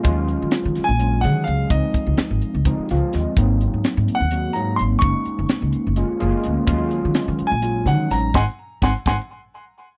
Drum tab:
HH |xxxxxxx|xxxxxxx|xxxxxxx|xxxxxxx|
SD |--oo-o-|--o--oo|--o----|--o----|
BD |o------|oo--o--|o------|o------|

HH |xxxxxxx|-------|
SD |--o--oo|o-oo---|
BD |o------|o-oo---|